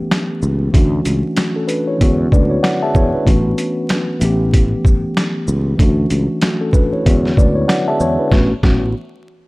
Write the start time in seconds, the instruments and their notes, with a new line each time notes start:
Already playing: tine electric piano E3 A3 B3 C#4 G4
0.11 snare, closed hi-hat
0.42 fretless electric bass C#2, shaker
0.71 fretless electric bass D2, tine electric piano E3 A3 C#4, kick, closed hi-hat
0.76 tine electric piano D4 F#4
1.05 fretless electric bass C#2, closed hi-hat, shaker
1.37 tine electric piano A3 F#4, snare, closed hi-hat
1.56 tine electric piano C#4 A4
1.68 tine electric piano D4 B4, closed hi-hat, shaker
1.87 tine electric piano E4 C#5
1.98 fretless electric bass E2, tine electric piano D3 G#3 B3, kick, closed hi-hat
2.02 tine electric piano C#4 F#4
2.32 fretless electric bass D2, tine electric piano D4 B4 D5, kick, shaker
2.50 tine electric piano E4 C#5
2.63 tine electric piano F#4 D5 F#5, snare, closed hi-hat
2.83 tine electric piano G#4 E5 A5
2.95 fretless electric bass E2, tine electric piano E4 C#5, kick, shaker
3.14 tine electric piano D4 B4
3.25 fretless electric bass A1, tine electric piano E3 A3 B3 C#4 F#4, kick, closed hi-hat
3.58 closed hi-hat, shaker
3.89 snare, closed hi-hat
4.19 fretless electric bass A1, tine electric piano E3 A3 B3, closed hi-hat, shaker
4.23 tine electric piano C4 G4
4.30 tine electric piano C#4
4.54 kick, closed hi-hat
4.85 kick, shaker
5.17 snare, closed hi-hat
5.48 fretless electric bass C#2, shaker
5.77 fretless electric bass D2, tine electric piano E3 A3 C#4, kick, closed hi-hat
5.81 tine electric piano D4 F#4
6.10 fretless electric bass C#2, closed hi-hat, shaker
6.42 tine electric piano A3 F#4, snare, closed hi-hat
6.61 tine electric piano C#4 A4
6.73 tine electric piano D4 B4, kick, shaker
6.93 tine electric piano E4 C#5
7.03 fretless electric bass E2, tine electric piano D3 G#3 B3, kick, closed hi-hat
7.08 tine electric piano C#4 F#4
7.25 snare
7.37 fretless electric bass D2, tine electric piano D4 B4 D5, kick, shaker
7.55 tine electric piano E4 C#5
7.68 tine electric piano F#4 D5 F#5, snare, closed hi-hat
7.88 tine electric piano G#4 E5 A5
8.00 fretless electric bass E2, tine electric piano E4 C#5, shaker
8.19 tine electric piano D4 B4
8.32 fretless electric bass A1, tine electric piano E3 A3 B3 C#4 F#4, kick, snare
8.63 fretless electric bass A1, tine electric piano E3 A3 B3 C#4 F#4, kick, snare